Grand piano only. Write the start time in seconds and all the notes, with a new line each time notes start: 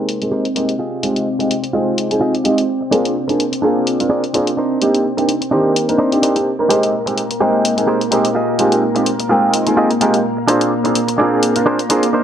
Already playing: G#3 A#3 C4 D#4 G5
0.22 G#3 A#3 C4 D#4 G#4
0.56 G#3 A#3 C4 D#4 G4
1.03 G#3 C4 D#4 F4 G4
1.40 G#3 C4 D#4 F4 G4
1.74 G#3 C4 D#4 F4 G5
2.10 G#3 C4 D#4 F4 G#4
2.45 G#3 C4 D#4 F4 G4
2.92 A#3 C4 D4 F4 G#4
3.29 A#3 C4 D4 F4 G#4
3.63 A#3 C4 D4 F4 G#4
3.99 A#3 C4 D4 F4 A#4
4.34 A#3 C4 D4 F4 G#4
4.81 A#3 C4 D4 D#4 G4
5.18 A#3 C4 D4 D#4 G4
5.52 D#3 A#3 C4 G4
5.88 A#3 C4 D4 D#4 A#4
6.12 A#3 C4 D4 D#4 G4
6.35 A#3 C4 D4 D#4 G4
6.59 A#3 C4 D4 D#4 A#4
6.69 G#3 A#3 C4 D#4 G4
7.06 G#3 A#3 C4 D#4 G4
7.41 G#3 A#3 C4 D#4 G5
7.77 G#3 A#3 C4 D#4 G#4
8.12 G#3 A#3 C4 D#4 G4
8.59 G#3 C4 D#4 F4 G4
8.95 G#3 C4 D#4 F4 G4
9.30 G#3 C4 D#4 F4 G5
9.66 G#3 C4 D#4 F4 G#4
10.01 G#3 C4 D#4 F4 G4
10.48 A#3 C4 D4 F4 G#4
10.84 A#3 C4 D4 F4 G#4
11.19 A#3 C4 D4 F4 G#4
11.55 A#3 C4 D4 F4 A#4
11.90 A#3 C4 D4 F4 G#4